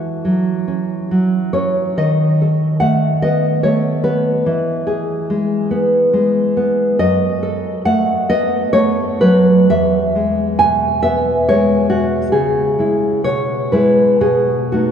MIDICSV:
0, 0, Header, 1, 2, 480
1, 0, Start_track
1, 0, Key_signature, 4, "major"
1, 0, Tempo, 872093
1, 1092, Time_signature, 3, 2, 24, 8
1, 1092, Tempo, 824176
1, 2532, Tempo, 846262
1, 4452, Tempo, 882353
1, 4932, Tempo, 964630
1, 5412, Tempo, 890208
1, 7332, Tempo, 964630
1, 7812, Tempo, 1047120
1, 8133, End_track
2, 0, Start_track
2, 0, Title_t, "Nylon-string guitar"
2, 0, Program_c, 0, 24
2, 0, Note_on_c, 0, 52, 39
2, 0, Note_on_c, 0, 66, 34
2, 0, Note_on_c, 0, 69, 56
2, 136, Note_on_c, 0, 54, 33
2, 372, Note_on_c, 0, 61, 38
2, 590, Note_off_c, 0, 69, 0
2, 605, Note_off_c, 0, 54, 0
2, 612, Note_on_c, 0, 54, 36
2, 616, Note_off_c, 0, 66, 0
2, 840, Note_off_c, 0, 61, 0
2, 842, Note_on_c, 0, 73, 58
2, 847, Note_on_c, 0, 61, 36
2, 1073, Note_off_c, 0, 52, 0
2, 1077, Note_off_c, 0, 73, 0
2, 1086, Note_on_c, 0, 51, 44
2, 1089, Note_off_c, 0, 61, 0
2, 1089, Note_on_c, 0, 75, 61
2, 1091, Note_off_c, 0, 54, 0
2, 1344, Note_on_c, 0, 69, 37
2, 1560, Note_off_c, 0, 75, 0
2, 1567, Note_on_c, 0, 78, 67
2, 1574, Note_on_c, 0, 57, 39
2, 1803, Note_off_c, 0, 78, 0
2, 1814, Note_on_c, 0, 75, 70
2, 1823, Note_on_c, 0, 59, 39
2, 2043, Note_off_c, 0, 75, 0
2, 2052, Note_on_c, 0, 73, 66
2, 2054, Note_off_c, 0, 57, 0
2, 2057, Note_off_c, 0, 69, 0
2, 2061, Note_on_c, 0, 57, 40
2, 2280, Note_off_c, 0, 73, 0
2, 2284, Note_off_c, 0, 59, 0
2, 2288, Note_on_c, 0, 71, 63
2, 2291, Note_on_c, 0, 59, 41
2, 2505, Note_off_c, 0, 51, 0
2, 2531, Note_off_c, 0, 59, 0
2, 2534, Note_off_c, 0, 57, 0
2, 2535, Note_on_c, 0, 52, 51
2, 2765, Note_on_c, 0, 68, 44
2, 3010, Note_on_c, 0, 56, 42
2, 3242, Note_on_c, 0, 59, 45
2, 3464, Note_off_c, 0, 71, 0
2, 3477, Note_off_c, 0, 56, 0
2, 3484, Note_on_c, 0, 56, 48
2, 3487, Note_off_c, 0, 68, 0
2, 3723, Note_off_c, 0, 59, 0
2, 3730, Note_on_c, 0, 59, 44
2, 3950, Note_off_c, 0, 52, 0
2, 3968, Note_off_c, 0, 56, 0
2, 3971, Note_off_c, 0, 59, 0
2, 3971, Note_on_c, 0, 75, 79
2, 3976, Note_on_c, 0, 42, 50
2, 4217, Note_on_c, 0, 69, 47
2, 4433, Note_off_c, 0, 75, 0
2, 4459, Note_on_c, 0, 57, 40
2, 4459, Note_on_c, 0, 78, 78
2, 4681, Note_off_c, 0, 78, 0
2, 4699, Note_off_c, 0, 69, 0
2, 4699, Note_on_c, 0, 75, 89
2, 4701, Note_on_c, 0, 59, 46
2, 4929, Note_off_c, 0, 75, 0
2, 4931, Note_off_c, 0, 57, 0
2, 4934, Note_on_c, 0, 73, 81
2, 4937, Note_on_c, 0, 57, 50
2, 5164, Note_off_c, 0, 73, 0
2, 5173, Note_on_c, 0, 71, 78
2, 5176, Note_on_c, 0, 54, 47
2, 5396, Note_off_c, 0, 42, 0
2, 5403, Note_off_c, 0, 71, 0
2, 5415, Note_off_c, 0, 54, 0
2, 5416, Note_off_c, 0, 57, 0
2, 5418, Note_on_c, 0, 76, 81
2, 5420, Note_off_c, 0, 59, 0
2, 5420, Note_on_c, 0, 40, 57
2, 5664, Note_on_c, 0, 56, 40
2, 5879, Note_off_c, 0, 76, 0
2, 5897, Note_on_c, 0, 47, 43
2, 5897, Note_on_c, 0, 80, 79
2, 6125, Note_off_c, 0, 80, 0
2, 6133, Note_on_c, 0, 76, 85
2, 6140, Note_on_c, 0, 59, 43
2, 6362, Note_off_c, 0, 76, 0
2, 6375, Note_off_c, 0, 56, 0
2, 6381, Note_on_c, 0, 73, 83
2, 6385, Note_on_c, 0, 56, 47
2, 6596, Note_off_c, 0, 47, 0
2, 6600, Note_off_c, 0, 73, 0
2, 6602, Note_on_c, 0, 47, 44
2, 6602, Note_on_c, 0, 66, 66
2, 6824, Note_off_c, 0, 40, 0
2, 6829, Note_off_c, 0, 66, 0
2, 6831, Note_on_c, 0, 68, 67
2, 6832, Note_off_c, 0, 47, 0
2, 6834, Note_on_c, 0, 49, 54
2, 6845, Note_off_c, 0, 59, 0
2, 6849, Note_off_c, 0, 56, 0
2, 7082, Note_on_c, 0, 56, 38
2, 7089, Note_on_c, 0, 64, 42
2, 7308, Note_off_c, 0, 68, 0
2, 7311, Note_off_c, 0, 56, 0
2, 7314, Note_off_c, 0, 64, 0
2, 7315, Note_off_c, 0, 49, 0
2, 7329, Note_on_c, 0, 73, 77
2, 7332, Note_on_c, 0, 47, 50
2, 7557, Note_off_c, 0, 73, 0
2, 7566, Note_on_c, 0, 71, 63
2, 7571, Note_on_c, 0, 56, 39
2, 7571, Note_on_c, 0, 64, 42
2, 7794, Note_off_c, 0, 64, 0
2, 7795, Note_off_c, 0, 56, 0
2, 7798, Note_off_c, 0, 47, 0
2, 7802, Note_off_c, 0, 71, 0
2, 7809, Note_on_c, 0, 47, 53
2, 7810, Note_on_c, 0, 68, 68
2, 8040, Note_off_c, 0, 68, 0
2, 8044, Note_on_c, 0, 66, 55
2, 8050, Note_on_c, 0, 57, 37
2, 8051, Note_on_c, 0, 63, 39
2, 8133, Note_off_c, 0, 47, 0
2, 8133, Note_off_c, 0, 57, 0
2, 8133, Note_off_c, 0, 63, 0
2, 8133, Note_off_c, 0, 66, 0
2, 8133, End_track
0, 0, End_of_file